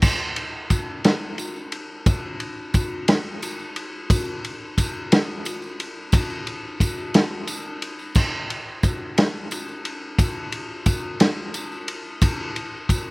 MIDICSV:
0, 0, Header, 1, 2, 480
1, 0, Start_track
1, 0, Tempo, 676437
1, 28, Time_signature, 6, 3, 24, 8
1, 9301, End_track
2, 0, Start_track
2, 0, Title_t, "Drums"
2, 13, Note_on_c, 9, 49, 108
2, 18, Note_on_c, 9, 36, 110
2, 21, Note_on_c, 9, 54, 97
2, 84, Note_off_c, 9, 49, 0
2, 89, Note_off_c, 9, 36, 0
2, 92, Note_off_c, 9, 54, 0
2, 257, Note_on_c, 9, 51, 77
2, 328, Note_off_c, 9, 51, 0
2, 497, Note_on_c, 9, 51, 72
2, 500, Note_on_c, 9, 36, 84
2, 501, Note_on_c, 9, 54, 104
2, 568, Note_off_c, 9, 51, 0
2, 571, Note_off_c, 9, 36, 0
2, 572, Note_off_c, 9, 54, 0
2, 741, Note_on_c, 9, 51, 93
2, 743, Note_on_c, 9, 54, 29
2, 746, Note_on_c, 9, 38, 112
2, 812, Note_off_c, 9, 51, 0
2, 814, Note_off_c, 9, 54, 0
2, 817, Note_off_c, 9, 38, 0
2, 978, Note_on_c, 9, 51, 68
2, 988, Note_on_c, 9, 54, 94
2, 1049, Note_off_c, 9, 51, 0
2, 1059, Note_off_c, 9, 54, 0
2, 1106, Note_on_c, 9, 54, 29
2, 1177, Note_off_c, 9, 54, 0
2, 1220, Note_on_c, 9, 51, 75
2, 1291, Note_off_c, 9, 51, 0
2, 1463, Note_on_c, 9, 36, 111
2, 1463, Note_on_c, 9, 51, 90
2, 1464, Note_on_c, 9, 54, 98
2, 1534, Note_off_c, 9, 36, 0
2, 1534, Note_off_c, 9, 51, 0
2, 1535, Note_off_c, 9, 54, 0
2, 1703, Note_on_c, 9, 51, 66
2, 1774, Note_off_c, 9, 51, 0
2, 1943, Note_on_c, 9, 54, 99
2, 1946, Note_on_c, 9, 36, 88
2, 1949, Note_on_c, 9, 51, 74
2, 2014, Note_off_c, 9, 54, 0
2, 2017, Note_off_c, 9, 36, 0
2, 2020, Note_off_c, 9, 51, 0
2, 2185, Note_on_c, 9, 51, 105
2, 2186, Note_on_c, 9, 54, 31
2, 2191, Note_on_c, 9, 38, 116
2, 2256, Note_off_c, 9, 51, 0
2, 2257, Note_off_c, 9, 54, 0
2, 2262, Note_off_c, 9, 38, 0
2, 2429, Note_on_c, 9, 54, 96
2, 2431, Note_on_c, 9, 51, 79
2, 2500, Note_off_c, 9, 54, 0
2, 2502, Note_off_c, 9, 51, 0
2, 2549, Note_on_c, 9, 54, 32
2, 2620, Note_off_c, 9, 54, 0
2, 2668, Note_on_c, 9, 51, 81
2, 2739, Note_off_c, 9, 51, 0
2, 2909, Note_on_c, 9, 36, 109
2, 2910, Note_on_c, 9, 51, 107
2, 2911, Note_on_c, 9, 54, 105
2, 2980, Note_off_c, 9, 36, 0
2, 2981, Note_off_c, 9, 51, 0
2, 2982, Note_off_c, 9, 54, 0
2, 3154, Note_on_c, 9, 51, 76
2, 3225, Note_off_c, 9, 51, 0
2, 3390, Note_on_c, 9, 36, 78
2, 3390, Note_on_c, 9, 54, 105
2, 3392, Note_on_c, 9, 51, 85
2, 3461, Note_off_c, 9, 36, 0
2, 3461, Note_off_c, 9, 54, 0
2, 3463, Note_off_c, 9, 51, 0
2, 3632, Note_on_c, 9, 51, 107
2, 3634, Note_on_c, 9, 54, 32
2, 3638, Note_on_c, 9, 38, 110
2, 3703, Note_off_c, 9, 51, 0
2, 3705, Note_off_c, 9, 54, 0
2, 3709, Note_off_c, 9, 38, 0
2, 3869, Note_on_c, 9, 54, 102
2, 3875, Note_on_c, 9, 51, 81
2, 3940, Note_off_c, 9, 54, 0
2, 3946, Note_off_c, 9, 51, 0
2, 3989, Note_on_c, 9, 54, 29
2, 4060, Note_off_c, 9, 54, 0
2, 4114, Note_on_c, 9, 51, 84
2, 4185, Note_off_c, 9, 51, 0
2, 4345, Note_on_c, 9, 54, 107
2, 4349, Note_on_c, 9, 36, 118
2, 4352, Note_on_c, 9, 51, 103
2, 4416, Note_off_c, 9, 54, 0
2, 4420, Note_off_c, 9, 36, 0
2, 4423, Note_off_c, 9, 51, 0
2, 4470, Note_on_c, 9, 54, 34
2, 4541, Note_off_c, 9, 54, 0
2, 4590, Note_on_c, 9, 51, 69
2, 4661, Note_off_c, 9, 51, 0
2, 4828, Note_on_c, 9, 36, 79
2, 4830, Note_on_c, 9, 54, 106
2, 4832, Note_on_c, 9, 51, 77
2, 4899, Note_off_c, 9, 36, 0
2, 4901, Note_off_c, 9, 54, 0
2, 4903, Note_off_c, 9, 51, 0
2, 4952, Note_on_c, 9, 54, 31
2, 5023, Note_off_c, 9, 54, 0
2, 5068, Note_on_c, 9, 51, 97
2, 5071, Note_on_c, 9, 54, 30
2, 5074, Note_on_c, 9, 38, 109
2, 5139, Note_off_c, 9, 51, 0
2, 5142, Note_off_c, 9, 54, 0
2, 5145, Note_off_c, 9, 38, 0
2, 5303, Note_on_c, 9, 51, 75
2, 5306, Note_on_c, 9, 54, 99
2, 5374, Note_off_c, 9, 51, 0
2, 5377, Note_off_c, 9, 54, 0
2, 5549, Note_on_c, 9, 51, 77
2, 5551, Note_on_c, 9, 54, 27
2, 5620, Note_off_c, 9, 51, 0
2, 5622, Note_off_c, 9, 54, 0
2, 5670, Note_on_c, 9, 54, 32
2, 5741, Note_off_c, 9, 54, 0
2, 5781, Note_on_c, 9, 54, 100
2, 5788, Note_on_c, 9, 36, 112
2, 5791, Note_on_c, 9, 49, 95
2, 5852, Note_off_c, 9, 54, 0
2, 5859, Note_off_c, 9, 36, 0
2, 5862, Note_off_c, 9, 49, 0
2, 6033, Note_on_c, 9, 51, 72
2, 6104, Note_off_c, 9, 51, 0
2, 6266, Note_on_c, 9, 54, 99
2, 6268, Note_on_c, 9, 36, 82
2, 6273, Note_on_c, 9, 51, 72
2, 6337, Note_off_c, 9, 54, 0
2, 6339, Note_off_c, 9, 36, 0
2, 6344, Note_off_c, 9, 51, 0
2, 6510, Note_on_c, 9, 54, 35
2, 6512, Note_on_c, 9, 51, 103
2, 6517, Note_on_c, 9, 38, 116
2, 6581, Note_off_c, 9, 54, 0
2, 6583, Note_off_c, 9, 51, 0
2, 6588, Note_off_c, 9, 38, 0
2, 6748, Note_on_c, 9, 54, 93
2, 6754, Note_on_c, 9, 51, 77
2, 6819, Note_off_c, 9, 54, 0
2, 6825, Note_off_c, 9, 51, 0
2, 6870, Note_on_c, 9, 54, 34
2, 6941, Note_off_c, 9, 54, 0
2, 6990, Note_on_c, 9, 51, 81
2, 7061, Note_off_c, 9, 51, 0
2, 7228, Note_on_c, 9, 36, 106
2, 7228, Note_on_c, 9, 54, 109
2, 7230, Note_on_c, 9, 51, 101
2, 7299, Note_off_c, 9, 36, 0
2, 7299, Note_off_c, 9, 54, 0
2, 7301, Note_off_c, 9, 51, 0
2, 7467, Note_on_c, 9, 51, 81
2, 7538, Note_off_c, 9, 51, 0
2, 7706, Note_on_c, 9, 54, 117
2, 7707, Note_on_c, 9, 36, 89
2, 7707, Note_on_c, 9, 51, 83
2, 7777, Note_off_c, 9, 54, 0
2, 7778, Note_off_c, 9, 36, 0
2, 7778, Note_off_c, 9, 51, 0
2, 7948, Note_on_c, 9, 51, 106
2, 7952, Note_on_c, 9, 54, 34
2, 7953, Note_on_c, 9, 38, 110
2, 8019, Note_off_c, 9, 51, 0
2, 8023, Note_off_c, 9, 54, 0
2, 8024, Note_off_c, 9, 38, 0
2, 8189, Note_on_c, 9, 51, 80
2, 8189, Note_on_c, 9, 54, 99
2, 8260, Note_off_c, 9, 51, 0
2, 8260, Note_off_c, 9, 54, 0
2, 8315, Note_on_c, 9, 54, 36
2, 8385, Note_off_c, 9, 54, 0
2, 8429, Note_on_c, 9, 51, 81
2, 8500, Note_off_c, 9, 51, 0
2, 8669, Note_on_c, 9, 54, 111
2, 8670, Note_on_c, 9, 36, 114
2, 8673, Note_on_c, 9, 51, 106
2, 8740, Note_off_c, 9, 54, 0
2, 8741, Note_off_c, 9, 36, 0
2, 8744, Note_off_c, 9, 51, 0
2, 8913, Note_on_c, 9, 51, 70
2, 8984, Note_off_c, 9, 51, 0
2, 9148, Note_on_c, 9, 36, 84
2, 9152, Note_on_c, 9, 51, 81
2, 9152, Note_on_c, 9, 54, 115
2, 9219, Note_off_c, 9, 36, 0
2, 9223, Note_off_c, 9, 51, 0
2, 9223, Note_off_c, 9, 54, 0
2, 9301, End_track
0, 0, End_of_file